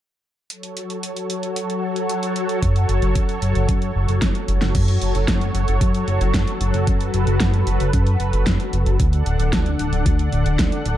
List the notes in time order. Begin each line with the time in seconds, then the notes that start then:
0.50 F#3 F#4 A4 C#5, closed hi-hat
0.63 closed hi-hat
0.77 closed hi-hat
0.90 closed hi-hat
1.03 closed hi-hat
1.16 closed hi-hat
1.30 closed hi-hat
1.43 closed hi-hat
1.56 closed hi-hat
1.70 closed hi-hat
1.96 closed hi-hat
2.10 closed hi-hat
2.23 closed hi-hat
2.36 closed hi-hat
2.49 closed hi-hat
2.63 F#2, kick, closed hi-hat
2.76 closed hi-hat
2.89 F#1, closed hi-hat
3.02 F#1, closed hi-hat
3.15 F#2, kick, closed hi-hat
3.29 closed hi-hat
3.42 F#1, closed hi-hat
3.55 F#1, closed hi-hat
3.69 F#2, kick, closed hi-hat
3.82 closed hi-hat
3.95 F#1
4.08 F#1, closed hi-hat
4.22 F#2, kick, snare, closed hi-hat
4.35 closed hi-hat
4.48 F#1, closed hi-hat
4.62 F#1, snare, closed hi-hat
4.75 F#2 F#3 F#4 A4 C#5, kick, closed hi-hat, crash
4.88 closed hi-hat
5.01 F#1, closed hi-hat
5.15 F#1, closed hi-hat
5.28 F#2, kick, snare, closed hi-hat
5.41 closed hi-hat
5.55 F#1, closed hi-hat
5.68 F#1, closed hi-hat
5.81 F#2, kick, closed hi-hat
5.94 closed hi-hat
6.08 F#1, closed hi-hat
6.21 F#1, closed hi-hat
6.34 F#2, kick, snare, closed hi-hat
6.47 closed hi-hat
6.61 F#1, closed hi-hat
6.74 F#1, closed hi-hat
6.87 F#2 B4, kick, closed hi-hat
7.01 closed hi-hat
7.14 F#1, closed hi-hat
7.27 F#1, closed hi-hat
7.40 F#2, kick, snare, closed hi-hat
7.54 closed hi-hat
7.67 F#1, closed hi-hat
7.80 F#1, closed hi-hat
7.93 F#2, kick, closed hi-hat
8.07 closed hi-hat
8.20 F#1, closed hi-hat
8.33 F#1, closed hi-hat
8.46 F#2, kick, snare, closed hi-hat
8.60 closed hi-hat
8.73 F#1, closed hi-hat
8.86 F#1, closed hi-hat
9.00 D2 D3 D4 A4 F#5, kick, closed hi-hat
9.13 closed hi-hat
9.26 D1, closed hi-hat
9.40 D1, closed hi-hat
9.53 D2, kick, snare, closed hi-hat
9.66 closed hi-hat
9.79 D1, closed hi-hat
9.93 D1, closed hi-hat
10.06 D2, kick, closed hi-hat
10.19 closed hi-hat
10.32 D1, closed hi-hat
10.46 D1, closed hi-hat
10.59 D2, kick, snare, closed hi-hat
10.72 closed hi-hat
10.86 D1, closed hi-hat